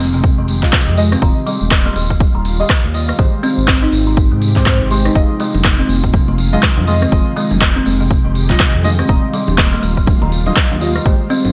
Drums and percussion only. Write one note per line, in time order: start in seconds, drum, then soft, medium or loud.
0.13 tambourine medium
0.24 kick loud
0.24 tambourine soft
0.48 open hi-hat medium
0.48 tambourine medium
0.63 kick medium
0.63 clap soft
0.63 tambourine medium
0.73 kick loud
0.73 cross-stick loud
0.73 clap loud
0.73 tambourine soft
0.97 open hi-hat medium
0.97 tambourine loud
1.12 cross-stick medium
1.12 tambourine medium
1.22 kick loud
1.22 tambourine soft
1.47 open hi-hat loud
1.47 tambourine medium
1.61 tambourine medium
1.71 kick loud
1.71 cross-stick loud
1.71 clap medium
1.96 open hi-hat medium
1.96 tambourine medium
2.10 kick medium
2.10 tambourine medium
2.20 kick loud
2.20 tambourine soft
2.45 open hi-hat medium
2.45 tambourine loud
2.60 tambourine medium
2.70 kick loud
2.70 cross-stick loud
2.70 clap medium
2.70 tambourine soft
2.94 open hi-hat medium
2.94 tambourine loud
3.09 cross-stick medium
3.09 tambourine medium
3.19 kick loud
3.19 tambourine soft
3.44 open hi-hat medium
3.44 tambourine medium
3.59 tambourine medium
3.68 kick loud
3.68 cross-stick loud
3.68 clap loud
3.68 tambourine soft
3.93 open hi-hat medium
3.93 tambourine medium
4.08 tambourine soft
4.17 kick loud
4.17 tambourine soft
4.42 open hi-hat medium
4.42 tambourine loud
4.56 kick medium
4.56 clap soft
4.56 tambourine medium
4.66 kick loud
4.66 cross-stick loud
4.66 clap medium
4.91 open hi-hat medium
4.91 tambourine loud
5.05 cross-stick medium
5.05 tambourine medium
5.15 kick loud
5.15 tambourine soft
5.15 high conga medium
5.40 open hi-hat medium
5.40 tambourine loud
5.55 tambourine medium
5.55 low conga loud
5.64 kick loud
5.64 cross-stick loud
5.64 clap loud
5.64 tambourine soft
5.64 high conga loud
5.89 open hi-hat medium
5.89 tambourine medium
5.89 high conga loud
6.04 kick medium
6.04 tambourine soft
6.13 kick loud
6.13 tambourine soft
6.13 high conga medium
6.13 low conga loud
6.28 high conga loud
6.38 open hi-hat medium
6.38 tambourine loud
6.53 tambourine soft
6.53 low conga loud
6.63 kick loud
6.63 cross-stick loud
6.63 clap loud
6.78 low conga loud
6.87 open hi-hat medium
6.87 tambourine medium
6.87 high conga medium
7.02 cross-stick medium
7.02 tambourine medium
7.12 kick loud
7.12 tambourine soft
7.12 high conga medium
7.37 open hi-hat medium
7.37 tambourine medium
7.51 tambourine medium
7.51 low conga loud
7.61 kick loud
7.61 cross-stick loud
7.61 clap loud
7.61 tambourine soft
7.61 high conga loud
7.86 open hi-hat medium
7.86 tambourine medium
7.86 high conga medium
8.00 tambourine soft
8.11 kick loud
8.11 tambourine soft
8.35 open hi-hat medium
8.35 tambourine medium
8.49 kick medium
8.49 clap soft
8.49 tambourine medium
8.49 low conga medium
8.59 kick loud
8.59 cross-stick loud
8.59 clap loud
8.59 tambourine soft
8.84 open hi-hat medium
8.84 tambourine loud
8.84 high conga medium
8.84 low conga medium
8.99 cross-stick medium
8.99 tambourine medium
9.08 kick loud
9.08 tambourine soft
9.08 high conga medium
9.33 open hi-hat medium
9.33 tambourine medium
9.47 tambourine soft
9.47 low conga loud
9.58 kick loud
9.58 cross-stick loud
9.58 clap loud
9.58 tambourine soft
9.58 high conga loud
9.82 open hi-hat medium
9.82 tambourine medium
9.82 high conga medium
9.97 kick medium
9.97 tambourine soft
10.07 kick loud
10.07 tambourine soft
10.07 high conga medium
10.07 low conga loud
10.22 high conga loud
10.32 open hi-hat medium
10.32 tambourine medium
10.47 tambourine soft
10.47 low conga loud
10.56 kick loud
10.56 cross-stick loud
10.56 clap loud
10.56 tambourine soft
10.72 low conga loud
10.81 open hi-hat medium
10.81 tambourine loud
10.81 high conga medium
10.96 cross-stick medium
10.96 tambourine soft
11.06 kick loud
11.06 tambourine soft
11.06 high conga medium
11.30 open hi-hat medium
11.30 tambourine medium
11.45 tambourine soft
11.45 low conga loud